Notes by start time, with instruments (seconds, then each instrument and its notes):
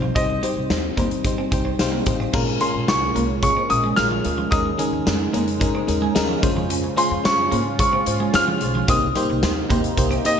Already playing: fm electric piano C3 G3 C4 D#4 C5, grand piano C5
0.02 clean electric guitar F3
0.15 upright bass C2, fm electric piano G3 C4 D#4 C5, clean electric guitar C4, grand piano D#5, kick, closed hi-hat
0.30 muted clean electric guitar stroke
0.43 fm electric piano G3 C4 D#4 C5, clean electric guitar G3, closed hi-hat
0.57 upright bass C2
0.70 upright bass D#2, fm electric piano G3 C4 D#4 C5, snare, closed hi-hat
0.97 upright bass D#2, fm electric piano G3 C4 D#4 C5, clean electric guitar A#3, kick, closed hi-hat
1.11 closed hi-hat
1.25 fm electric piano G3 C4 D#4 C5, kick, closed hi-hat
1.38 clean electric guitar C4
1.51 upright bass C2, fm electric piano G3 C4 D#4 C5 G5, muted clean electric guitar stroke, kick, closed hi-hat
1.65 clean electric guitar C4
1.79 upright bass C2, fm electric piano G3 C4 D#4 C5 F5, snare, closed hi-hat
1.92 clean electric guitar A#3
2.06 upright bass A1, fm electric piano G3 C4 D#4 C5 D#5, muted clean electric guitar stroke, kick, closed hi-hat
2.20 clean electric guitar C4
2.33 upright bass A#1, analog synth pad A#2 G#3 C#4, fm electric piano A#2 G#3 C#4 F4 A#4, clean electric guitar A#3, kick, crash
2.47 muted clean electric guitar stroke
2.61 clean electric guitar G#3, fm electric piano G#3 C#4 F4 A#4, grand piano C6, closed hi-hat
2.74 upright bass A#1
2.88 upright bass C2, fm electric piano G#3 C#4 F4 G#4, grand piano C#6, snare, closed hi-hat
3.14 upright bass C2, fm electric piano G#3 C#4 F4 A#4, clean electric guitar A#3, closed hi-hat
3.42 fm electric piano G#3 C#4 F4 G#4, grand piano C#6, kick, closed hi-hat
3.57 clean electric guitar C4
3.69 upright bass A#1, fm electric piano G#3 C#4 F4 A#4, grand piano D#6, muted clean electric guitar stroke, closed hi-hat
3.84 clean electric guitar G#3
3.96 upright bass A#1, fm electric piano G#3 C#4 F4 A#4, grand piano F6, snare, closed hi-hat
4.11 clean electric guitar F3
4.24 upright bass D2, fm electric piano G#3 C#4 F4 A#4, muted clean electric guitar stroke, closed hi-hat
4.38 clean electric guitar F3
4.51 upright bass D#2, analog synth pad C#3 G#3 D#4, fm electric piano D#3 G#3 C#4 D#4 A#4, clean electric guitar D#4, grand piano D#6, kick, closed hi-hat
4.66 muted clean electric guitar stroke
4.78 fm electric piano G#3 C#4 D#4 A#4, clean electric guitar G#3, closed hi-hat
4.93 upright bass D#2
5.05 upright bass F2, fm electric piano G#3 C#4 D#4 A#4, snare, closed hi-hat, tambourine
5.33 upright bass F2, fm electric piano G#3 C#4 D#4 A#4, clean electric guitar A#3, closed hi-hat
5.48 closed hi-hat
5.60 fm electric piano G#3 C#4 D#4 A#4, kick, closed hi-hat
5.75 clean electric guitar C4
5.87 upright bass D#2, fm electric piano G#3 C#4 D#4 A#4, muted clean electric guitar stroke, closed hi-hat
6.02 clean electric guitar G#3
6.15 upright bass D#2, fm electric piano G#3 C#4 D#4 A#4, snare, closed hi-hat, tambourine
6.29 clean electric guitar F3
6.42 upright bass F2, fm electric piano G#3 C#4 F4 C5, analog synth pad C#4 F4, muted clean electric guitar stroke, kick, closed hi-hat
6.57 clean electric guitar F3
6.70 clean electric guitar C#4, closed hi-hat
6.84 muted clean electric guitar stroke
6.96 fm electric piano G#3 C#4 F4 C5, clean electric guitar G#3, grand piano C6, closed hi-hat
7.11 upright bass F2
7.24 upright bass F2, fm electric piano G#3 C#4 F4 C5, grand piano C#6, snare, closed hi-hat, tambourine
7.52 upright bass G#2, fm electric piano G#3 C#4 F4 C5, clean electric guitar A#3, closed hi-hat
7.79 fm electric piano G#3 C#4 F4 C5, grand piano C#6, kick, closed hi-hat
7.93 clean electric guitar C4
8.06 upright bass G#2, fm electric piano G#3 C#4 F4 C5, muted clean electric guitar stroke, closed hi-hat
8.20 clean electric guitar G#3
8.33 upright bass F2, fm electric piano G#3 C#4 F4 C5, grand piano F6, snare, closed hi-hat, tambourine
8.48 clean electric guitar F3
8.61 upright bass B1, fm electric piano G#3 C#4 F4 C5, muted clean electric guitar stroke, closed hi-hat
8.75 clean electric guitar F3
8.88 upright bass C2, analog synth pad C3 A#3 D#4, fm electric piano C3 A#3 D#4 G4 C5, clean electric guitar C4, grand piano D#6, kick, closed hi-hat
9.02 muted clean electric guitar stroke
9.15 clean electric guitar G3, fm electric piano A#3 D#4 G4 C5, closed hi-hat
9.30 upright bass C2
9.43 upright bass D#2, fm electric piano A#3 D#4 G4 C5, snare, closed hi-hat, tambourine
9.70 upright bass D#2, fm electric piano A#3 D#4 G4 C5, clean electric guitar A#3, kick, closed hi-hat
9.84 closed hi-hat
9.97 upright bass C2, fm electric piano A#3 D#4 G4 C5, kick, closed hi-hat
10.11 clean electric guitar C4, closed hi-hat
10.25 fm electric piano A#3 D#4 G4 C5, grand piano D#5, muted upright bass stroke, muted clean electric guitar stroke, closed hi-hat